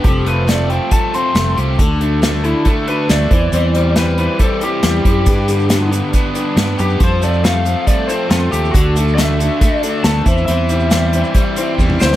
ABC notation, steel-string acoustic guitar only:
X:1
M:4/4
L:1/8
Q:1/4=138
K:Clyd
V:1 name="Steel-string acoustic guitar"
[=F,G,C=FA] [CFA] [F,G,CFA] [CFA] [G,CFA] [CFA] [F,G,CFA] [CFA] | [D,A,DFA] [DFA] [D,A,DFA] [DFA] [A,DFA] [DFA] [D,A,DFA] [CEc] | [E,G,CEc] [CEc] [E,G,CEc] [CEc] [G,CEc] [CEc] [E,G,CEc] [CEc] | [G,DGB] [DGB] [G,DGB] [DGB] [G,DGB] [DGB] [G,DGB] [DGB] |
[=F,G,C=FA] [CFA] [F,G,CFA] [CFA] [G,CFA] [CFA] [F,G,CFA] [CFA] | [D,A,DFA] [DFA] [D,A,DFA] [DFA] [A,DFA] [DFA] [D,A,DFA] [CEc] | [E,G,CEc] [CEc] [E,G,CEc] [CEc] [G,CEc] [CEc] [E,G,CEc] [CEc] |]